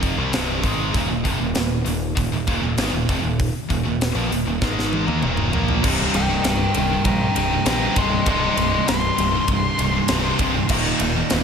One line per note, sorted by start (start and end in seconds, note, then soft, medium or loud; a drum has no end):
0.00 0.15 F1 medium
0.00 0.17 F2 medium
0.00 0.16 C3 medium
0.00 0.17 F3 loud
0.00 kick medium
0.00 open hi-hat medium
0.17 0.33 C2 medium
0.17 0.32 C3 medium
0.17 0.33 G3 medium
0.33 0.62 C1 loud
0.33 0.63 C2 medium
0.33 0.63 G2 loud
0.33 0.63 C3 medium
0.33 snare loud
0.33 open hi-hat medium
0.63 0.92 G#1 medium
0.63 0.94 G#2 loud
0.63 0.94 D#3 medium
0.63 0.94 G#3 loud
0.63 kick medium
0.63 open hi-hat medium
0.94 1.09 D#1 loud
0.94 1.08 D#2 medium
0.94 1.08 A#2 loud
0.94 kick loud
0.94 open hi-hat medium
1.09 1.24 D#1 medium
1.09 1.23 D#2 medium
1.09 1.23 A#2 medium
1.24 1.39 F1 loud
1.24 1.39 F2 medium
1.24 1.39 C3 medium
1.24 kick medium
1.24 open hi-hat medium
1.39 1.55 D#1 medium
1.39 1.54 D#2 medium
1.39 1.54 A#2 medium
1.55 1.85 D#1 medium
1.55 1.80 D#2 medium
1.55 1.80 A#2 medium
1.55 snare loud
1.55 open hi-hat medium
1.84 2.15 D#1 medium
1.84 2.10 D#2 medium
1.84 2.10 A#2 medium
1.84 open hi-hat medium
2.15 2.30 D#1 medium
2.15 2.31 D#2 medium
2.15 2.31 A#2 medium
2.15 kick loud
2.15 open hi-hat medium
2.31 2.46 D#1 medium
2.31 2.46 D#2 medium
2.31 2.46 A#2 medium
2.47 2.61 D#1 loud
2.47 2.60 D#2 medium
2.47 2.61 A#2 medium
2.47 kick medium
2.47 open hi-hat soft
2.61 2.76 D#1 medium
2.61 2.77 D#2 medium
2.61 2.78 A#2 medium
2.77 2.92 G#1 medium
2.77 2.92 G#2 medium
2.77 2.93 D#3 loud
2.77 snare loud
2.77 open hi-hat medium
2.92 3.07 D#1 medium
2.92 3.09 D#2 medium
2.92 3.09 A#2 medium
3.08 3.23 F1 medium
3.08 3.21 F2 loud
3.08 3.22 C3 loud
3.08 kick medium
3.08 open hi-hat medium
3.22 3.52 D#1 medium
3.22 3.48 D#2 medium
3.22 3.48 A#2 medium
3.40 kick loud
3.40 open hi-hat medium
3.69 3.84 D#1 medium
3.69 3.82 D#2 medium
3.69 3.83 A#2 medium
3.69 kick medium
3.69 open hi-hat medium
3.84 4.13 D#1 medium
3.84 4.09 D#2 medium
3.84 4.09 A#2 medium
4.01 snare loud
4.01 open hi-hat medium
4.15 4.30 A#1 medium
4.15 4.30 A#2 medium
4.15 4.31 F3 medium
4.31 4.45 D#1 medium
4.31 4.44 D#2 medium
4.31 4.45 A#2 medium
4.31 open hi-hat medium
4.45 4.60 D#1 medium
4.45 4.61 D#2 medium
4.45 4.61 A#2 medium
4.61 5.04 G#1 medium
4.61 5.07 G#2 medium
4.61 5.04 D#3 medium
4.61 5.06 G#3 loud
4.61 kick medium
4.61 snare medium
4.79 snare medium
4.93 high tom medium
5.05 5.22 D#2 medium
5.05 5.21 D#3 medium
5.05 5.21 A#3 medium
5.05 high tom medium
5.21 5.51 D#1 loud
5.21 5.51 D#2 medium
5.21 5.50 A#2 medium
5.21 5.52 D#3 loud
5.21 mid tom medium
5.37 mid tom medium
5.51 5.82 A#1 medium
5.51 5.82 A#2 loud
5.51 5.82 F3 medium
5.51 5.82 A#3 medium
5.51 floor tom loud
5.68 floor tom medium
5.83 6.05 C1 loud
5.83 6.12 C2 medium
5.83 6.12 G2 loud
5.83 6.13 C3 loud
5.83 8.26 G3 loud
5.83 8.27 D#4 loud
5.83 kick loud
5.83 crash loud
6.13 6.36 C1 medium
6.13 6.29 C2 medium
6.13 6.28 G2 medium
6.13 6.43 A#4 medium
6.13 6.44 G5 medium
6.13 ride medium
6.30 6.43 C2 medium
6.30 6.43 G2 medium
6.44 6.66 C1 loud
6.44 6.72 C2 medium
6.44 6.72 G2 medium
6.44 6.73 A#4 medium
6.44 6.73 G5 medium
6.44 snare loud
6.44 ride loud
6.74 6.97 C1 medium
6.74 6.89 C2 medium
6.74 6.89 G2 medium
6.74 7.03 A#4 medium
6.74 7.03 G5 medium
6.74 ride medium
6.90 7.03 C2 medium
6.90 7.04 G2 medium
7.04 7.27 A#1 loud
7.04 7.33 C2 medium
7.04 7.33 G2 medium
7.04 7.33 G5 medium
7.04 7.35 A#5 medium
7.04 kick loud
7.04 ride medium
7.35 7.57 C1 medium
7.35 7.49 C2 medium
7.35 7.48 G2 medium
7.35 7.64 G5 medium
7.35 7.66 A#5 medium
7.35 ride medium
7.50 7.64 C2 medium
7.50 7.64 G2 medium
7.65 7.87 A#1 medium
7.65 7.94 C2 loud
7.65 7.94 G2 loud
7.65 7.95 C3 loud
7.65 7.96 G5 medium
7.65 7.97 A#5 medium
7.65 snare loud
7.65 ride loud
7.95 8.18 C1 medium
7.95 8.10 C2 loud
7.95 8.10 G2 loud
7.95 8.10 C3 loud
7.95 8.26 D#5 medium
7.95 8.27 C6 loud
7.95 kick loud
7.95 ride medium
8.11 8.24 C2 medium
8.11 8.26 G2 medium
8.25 8.48 C1 loud
8.25 8.55 C2 loud
8.25 8.55 G2 loud
8.25 8.56 C3 loud
8.25 10.70 G3 medium
8.25 10.71 D#4 loud
8.25 8.56 D#5 medium
8.25 kick loud
8.25 ride loud
8.29 8.57 C6 medium
8.56 8.79 C1 loud
8.56 8.71 C2 medium
8.56 8.70 G2 medium
8.56 8.86 D#5 medium
8.56 8.87 C6 medium
8.56 ride medium
8.72 8.85 C2 medium
8.72 8.85 G2 medium
8.86 9.10 C1 medium
8.86 9.15 C2 medium
8.86 9.15 G2 medium
8.86 10.67 C6 loud
8.86 snare loud
8.86 ride loud
9.16 9.39 C1 loud
9.16 9.30 C2 medium
9.16 9.30 G2 medium
9.16 ride medium
9.31 9.46 C2 medium
9.31 9.47 G2 medium
9.36 9.50 C2 medium
9.36 9.50 G2 medium
9.48 9.70 C1 loud
9.48 9.76 C2 medium
9.48 9.76 G2 medium
9.48 kick loud
9.48 ride loud
9.53 9.78 G2 loud
9.78 10.00 C1 medium
9.78 9.92 C2 medium
9.78 9.91 G2 medium
9.78 ride medium
9.92 10.07 C2 medium
9.92 10.08 G2 medium
9.97 10.11 G2 medium
10.08 10.31 C1 loud
10.08 10.38 C2 loud
10.08 10.38 G2 loud
10.08 10.38 C3 loud
10.08 snare loud
10.08 ride loud
10.39 10.60 C1 medium
10.39 10.53 C2 loud
10.39 10.53 G2 loud
10.39 10.53 C3 loud
10.39 kick medium
10.39 ride medium
10.55 10.70 C2 medium
10.55 10.70 G2 medium
10.69 10.91 D#1 medium
10.69 10.99 D#2 medium
10.69 10.99 A#2 loud
10.69 10.99 D#3 loud
10.69 11.44 G3 medium
10.69 11.44 A#3 loud
10.69 11.44 D#4 loud
10.69 kick loud
10.69 crash loud
11.00 11.21 D#1 loud
11.00 11.15 D#2 medium
11.00 11.15 A#2 medium
11.00 ride medium
11.16 11.30 D#2 medium
11.16 11.31 A#2 medium
11.30 11.44 D#1 loud
11.30 11.44 D#2 medium
11.30 11.44 A#2 medium
11.30 snare loud
11.30 ride loud